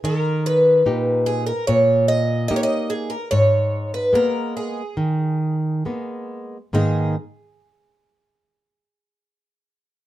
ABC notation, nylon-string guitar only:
X:1
M:4/4
L:1/8
Q:1/4=72
K:G#m
V:1 name="Nylon-string guitar"
D,2 [A,,D=G]2 A,,2 [A,DG]2 | G,,2 [G,A,B,]2 D,2 [G,A,B,]2 | [G,,D,G,A,B,D] z6 z |]